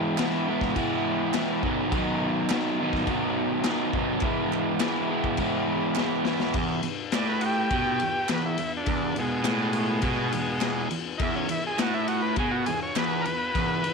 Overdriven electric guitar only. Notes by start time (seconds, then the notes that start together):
Already playing: E3 G#3 B3 E4
0.17 E3 G#3 B3 E4
0.48 E3 G#3 B3 E4
0.76 E3 G#3 B3 E4
1.35 E3 G#3 B3 E4
1.63 B2 D#3 F#3 B3 D#4
1.92 B2 D#3 F#3 B3 D#4
2.51 B2 D#3 F#3 B3 D#4
2.80 B2 D#3 F#3 B3 D#4
3.08 B2 D#3 F#3 B3 D#4
3.66 B2 D#3 F#3 B3 D#4
3.93 B2 D#3 F#3 B3
3.97 D#4
4.22 E3 G#3 B3 E4
4.80 E3 G#3 B3 E4
5.09 E3 G#3 B3 E4
5.39 E3 G#3 B3 E4
5.97 E3 G#3 B3 E4
6.26 E3 G#3 B3 E4
6.56 E2
6.83 E2
7.14 A2
7.71 B2
8.02 E2
8.30 E2
8.59 E2
8.87 E2
9.16 E2
9.44 A2
10.03 B2
10.34 E2
10.62 E2
10.90 E2
11.20 E2
11.49 E2
11.79 A2
12.38 B2
12.68 E2
12.96 E2
13.27 E2
13.55 E2
13.85 E2